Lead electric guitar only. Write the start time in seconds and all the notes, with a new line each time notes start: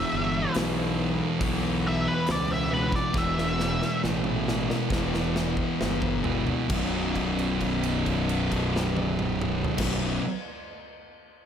Already playing: E5
1.87 E5
2.08 B4
2.31 D5
2.52 E5
2.74 B4
2.95 D5
3.18 E5